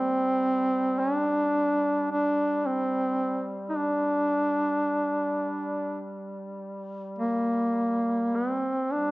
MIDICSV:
0, 0, Header, 1, 3, 480
1, 0, Start_track
1, 0, Key_signature, -2, "minor"
1, 0, Tempo, 1113173
1, 1866, Time_signature, 4, 2, 24, 8
1, 1867, Tempo, 1153846
1, 3856, End_track
2, 0, Start_track
2, 0, Title_t, "Duduk"
2, 0, Program_c, 0, 69
2, 0, Note_on_c, 0, 60, 95
2, 428, Note_on_c, 0, 62, 88
2, 434, Note_off_c, 0, 60, 0
2, 910, Note_off_c, 0, 62, 0
2, 914, Note_on_c, 0, 62, 87
2, 1148, Note_on_c, 0, 60, 78
2, 1155, Note_off_c, 0, 62, 0
2, 1515, Note_off_c, 0, 60, 0
2, 1593, Note_on_c, 0, 63, 56
2, 1626, Note_on_c, 0, 62, 84
2, 1633, Note_off_c, 0, 63, 0
2, 2580, Note_off_c, 0, 62, 0
2, 3056, Note_on_c, 0, 58, 78
2, 3539, Note_on_c, 0, 60, 65
2, 3545, Note_off_c, 0, 58, 0
2, 3777, Note_on_c, 0, 62, 82
2, 3783, Note_off_c, 0, 60, 0
2, 3856, Note_off_c, 0, 62, 0
2, 3856, End_track
3, 0, Start_track
3, 0, Title_t, "Duduk"
3, 0, Program_c, 1, 69
3, 0, Note_on_c, 1, 55, 39
3, 3712, Note_off_c, 1, 55, 0
3, 3782, Note_on_c, 1, 55, 42
3, 3856, Note_off_c, 1, 55, 0
3, 3856, End_track
0, 0, End_of_file